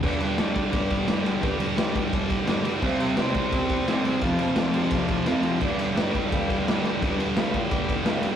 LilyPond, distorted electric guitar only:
\new Staff \with { instrumentName = "Distorted electric guitar" } { \clef bass \time 4/4 \key g \mixolydian \tempo 4 = 172 <g, d g>8 <d g>8 <g, d g>8 <d g>4. <g, d g>8 <d g>8 | <g, d g>8 <d g>8 <g, d g>8 <d g>4. <g, d g>8 <d g>8 | <c g c'>8 <g c'>8 <c g c'>8 <g c'>4. <c g c'>8 <g c'>8 | <f, c f>8 <c f>8 <f, c f>8 <c f>4. <f, c f>8 <c f>8 |
<g, d g>8 <d g>8 <g, d g>8 <d g>4. <g, d g>8 <d g>8 | <g, d g>8 <d g>8 <g, d g>8 <d g>4. <g, d g>8 <d g>8 | }